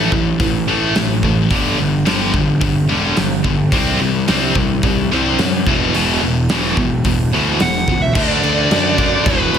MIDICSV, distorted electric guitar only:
0, 0, Header, 1, 2, 480
1, 0, Start_track
1, 0, Tempo, 554017
1, 1308, Time_signature, 4, 2, 24, 8
1, 8305, End_track
2, 0, Start_track
2, 0, Title_t, "Distorted electric guitar"
2, 0, Program_c, 0, 30
2, 0, Note_on_c, 0, 45, 85
2, 0, Note_on_c, 0, 52, 85
2, 0, Note_on_c, 0, 57, 101
2, 90, Note_off_c, 0, 45, 0
2, 93, Note_off_c, 0, 52, 0
2, 95, Note_off_c, 0, 57, 0
2, 109, Note_on_c, 0, 45, 72
2, 113, Note_on_c, 0, 52, 80
2, 324, Note_off_c, 0, 45, 0
2, 326, Note_off_c, 0, 52, 0
2, 348, Note_on_c, 0, 45, 81
2, 353, Note_on_c, 0, 52, 85
2, 563, Note_off_c, 0, 45, 0
2, 566, Note_off_c, 0, 52, 0
2, 588, Note_on_c, 0, 45, 81
2, 593, Note_on_c, 0, 52, 93
2, 595, Note_on_c, 0, 57, 86
2, 814, Note_off_c, 0, 45, 0
2, 816, Note_off_c, 0, 52, 0
2, 817, Note_off_c, 0, 57, 0
2, 835, Note_on_c, 0, 45, 71
2, 842, Note_on_c, 0, 52, 87
2, 1048, Note_off_c, 0, 45, 0
2, 1051, Note_off_c, 0, 52, 0
2, 1079, Note_on_c, 0, 45, 77
2, 1083, Note_on_c, 0, 52, 74
2, 1290, Note_off_c, 0, 45, 0
2, 1292, Note_off_c, 0, 52, 0
2, 1306, Note_on_c, 0, 43, 82
2, 1314, Note_on_c, 0, 50, 93
2, 1316, Note_on_c, 0, 55, 76
2, 1533, Note_off_c, 0, 43, 0
2, 1537, Note_off_c, 0, 50, 0
2, 1538, Note_off_c, 0, 55, 0
2, 1546, Note_on_c, 0, 43, 71
2, 1551, Note_on_c, 0, 50, 81
2, 1764, Note_off_c, 0, 43, 0
2, 1766, Note_off_c, 0, 50, 0
2, 1779, Note_on_c, 0, 43, 82
2, 1785, Note_on_c, 0, 50, 96
2, 1789, Note_on_c, 0, 55, 100
2, 2010, Note_off_c, 0, 43, 0
2, 2011, Note_off_c, 0, 50, 0
2, 2015, Note_off_c, 0, 55, 0
2, 2022, Note_on_c, 0, 43, 62
2, 2022, Note_on_c, 0, 50, 72
2, 2242, Note_off_c, 0, 43, 0
2, 2242, Note_off_c, 0, 50, 0
2, 2259, Note_on_c, 0, 43, 83
2, 2263, Note_on_c, 0, 50, 89
2, 2481, Note_off_c, 0, 43, 0
2, 2483, Note_off_c, 0, 50, 0
2, 2503, Note_on_c, 0, 43, 96
2, 2512, Note_on_c, 0, 50, 95
2, 2516, Note_on_c, 0, 55, 109
2, 2729, Note_off_c, 0, 43, 0
2, 2734, Note_off_c, 0, 50, 0
2, 2739, Note_off_c, 0, 55, 0
2, 2739, Note_on_c, 0, 43, 71
2, 2744, Note_on_c, 0, 50, 89
2, 2961, Note_off_c, 0, 43, 0
2, 2964, Note_off_c, 0, 50, 0
2, 2980, Note_on_c, 0, 43, 72
2, 2984, Note_on_c, 0, 50, 79
2, 3202, Note_off_c, 0, 43, 0
2, 3204, Note_off_c, 0, 50, 0
2, 3226, Note_on_c, 0, 48, 77
2, 3232, Note_on_c, 0, 55, 85
2, 3236, Note_on_c, 0, 60, 87
2, 3455, Note_off_c, 0, 48, 0
2, 3457, Note_off_c, 0, 55, 0
2, 3459, Note_off_c, 0, 60, 0
2, 3466, Note_on_c, 0, 48, 72
2, 3472, Note_on_c, 0, 55, 83
2, 3685, Note_off_c, 0, 48, 0
2, 3688, Note_off_c, 0, 55, 0
2, 3708, Note_on_c, 0, 48, 93
2, 3717, Note_on_c, 0, 55, 99
2, 3722, Note_on_c, 0, 60, 102
2, 3936, Note_off_c, 0, 48, 0
2, 3940, Note_off_c, 0, 55, 0
2, 3943, Note_off_c, 0, 60, 0
2, 3949, Note_on_c, 0, 48, 75
2, 3950, Note_on_c, 0, 55, 77
2, 4166, Note_off_c, 0, 48, 0
2, 4167, Note_off_c, 0, 55, 0
2, 4193, Note_on_c, 0, 48, 76
2, 4195, Note_on_c, 0, 55, 98
2, 4408, Note_off_c, 0, 48, 0
2, 4410, Note_off_c, 0, 55, 0
2, 4434, Note_on_c, 0, 48, 99
2, 4441, Note_on_c, 0, 55, 98
2, 4448, Note_on_c, 0, 60, 99
2, 4659, Note_off_c, 0, 48, 0
2, 4662, Note_off_c, 0, 55, 0
2, 4666, Note_off_c, 0, 60, 0
2, 4675, Note_on_c, 0, 48, 75
2, 4680, Note_on_c, 0, 55, 73
2, 4890, Note_off_c, 0, 48, 0
2, 4892, Note_off_c, 0, 55, 0
2, 4916, Note_on_c, 0, 40, 89
2, 4920, Note_on_c, 0, 47, 92
2, 4924, Note_on_c, 0, 52, 95
2, 5139, Note_off_c, 0, 40, 0
2, 5142, Note_off_c, 0, 47, 0
2, 5144, Note_off_c, 0, 52, 0
2, 5155, Note_on_c, 0, 40, 86
2, 5160, Note_on_c, 0, 47, 89
2, 5163, Note_on_c, 0, 52, 87
2, 5379, Note_off_c, 0, 40, 0
2, 5381, Note_off_c, 0, 47, 0
2, 5383, Note_off_c, 0, 52, 0
2, 5399, Note_on_c, 0, 40, 75
2, 5400, Note_on_c, 0, 47, 75
2, 5611, Note_off_c, 0, 40, 0
2, 5612, Note_off_c, 0, 47, 0
2, 5636, Note_on_c, 0, 40, 85
2, 5639, Note_on_c, 0, 47, 81
2, 5644, Note_on_c, 0, 52, 89
2, 5859, Note_off_c, 0, 40, 0
2, 5861, Note_off_c, 0, 47, 0
2, 5863, Note_off_c, 0, 52, 0
2, 5875, Note_on_c, 0, 40, 68
2, 5879, Note_on_c, 0, 47, 83
2, 6089, Note_off_c, 0, 40, 0
2, 6091, Note_off_c, 0, 47, 0
2, 6111, Note_on_c, 0, 40, 76
2, 6116, Note_on_c, 0, 47, 83
2, 6327, Note_off_c, 0, 40, 0
2, 6329, Note_off_c, 0, 47, 0
2, 6352, Note_on_c, 0, 40, 79
2, 6357, Note_on_c, 0, 47, 91
2, 6360, Note_on_c, 0, 52, 104
2, 6576, Note_off_c, 0, 40, 0
2, 6579, Note_off_c, 0, 47, 0
2, 6581, Note_off_c, 0, 52, 0
2, 6598, Note_on_c, 0, 47, 75
2, 6600, Note_on_c, 0, 40, 67
2, 6809, Note_off_c, 0, 47, 0
2, 6810, Note_off_c, 0, 40, 0
2, 6836, Note_on_c, 0, 40, 64
2, 6839, Note_on_c, 0, 47, 66
2, 7048, Note_off_c, 0, 40, 0
2, 7049, Note_off_c, 0, 47, 0
2, 7066, Note_on_c, 0, 50, 81
2, 7082, Note_on_c, 0, 57, 85
2, 7094, Note_on_c, 0, 62, 102
2, 7765, Note_off_c, 0, 62, 0
2, 7770, Note_off_c, 0, 50, 0
2, 7776, Note_on_c, 0, 62, 91
2, 7778, Note_off_c, 0, 57, 0
2, 7789, Note_on_c, 0, 57, 78
2, 7802, Note_on_c, 0, 50, 71
2, 8005, Note_off_c, 0, 62, 0
2, 8012, Note_off_c, 0, 57, 0
2, 8018, Note_off_c, 0, 50, 0
2, 8022, Note_on_c, 0, 40, 96
2, 8034, Note_on_c, 0, 47, 111
2, 8047, Note_on_c, 0, 52, 104
2, 8305, Note_off_c, 0, 40, 0
2, 8305, Note_off_c, 0, 47, 0
2, 8305, Note_off_c, 0, 52, 0
2, 8305, End_track
0, 0, End_of_file